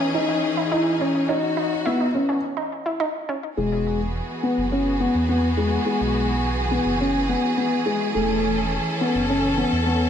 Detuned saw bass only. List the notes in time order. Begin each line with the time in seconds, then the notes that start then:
0.57 E2
1.43 B1
3.58 E1
4.58 F#1
5.14 E2
6.01 B1
6.86 F#1
8.15 E1
9.15 F#1
9.72 E2